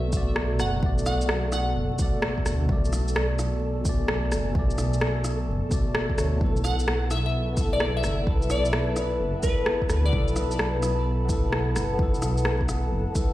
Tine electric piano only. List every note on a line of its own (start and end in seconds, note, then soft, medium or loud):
0.00 0.09 B2 medium
0.00 0.11 A3 medium
0.00 0.13 D5 medium
0.09 0.77 B2 medium
0.13 0.81 A3 medium
0.13 0.83 D5 medium
0.78 1.93 B2 medium
0.82 1.97 A3 medium
0.82 1.99 D5 medium
1.94 2.63 B2 medium
1.99 2.67 A3 medium
1.99 2.69 D5 medium
2.65 3.80 B2 medium
2.65 3.83 A3 medium
2.72 3.85 D5 medium
3.81 4.50 B2 medium
3.85 4.53 A3 medium
3.85 4.55 D5 medium
4.51 5.67 B2 medium
4.51 5.69 A3 medium
4.59 5.71 D5 medium
5.70 6.14 B2 medium
5.70 6.16 A3 medium
5.74 6.17 D5 medium
6.16 6.38 B2 medium
6.16 6.39 A3 medium
6.16 6.40 C#5 medium
6.37 7.52 B3 medium
6.41 7.55 E4 medium
6.45 7.57 A4 medium
7.53 8.20 B3 medium
7.53 8.24 E4 medium
7.61 8.27 A4 medium
8.22 9.38 B3 medium
8.22 9.41 E4 medium
8.30 9.43 A4 medium
9.39 10.07 B3 medium
9.39 10.11 E4 medium
9.47 10.13 A4 medium
10.09 11.24 B3 medium
10.13 11.27 E4 medium
10.13 11.29 A4 medium
11.25 11.93 B3 medium
11.29 11.97 E4 medium
11.29 11.99 A4 medium
11.94 13.11 B3 medium
11.94 13.13 E4 medium
12.02 13.15 A4 medium
13.13 13.33 B3 medium
13.13 13.33 E4 medium
13.17 13.33 A4 medium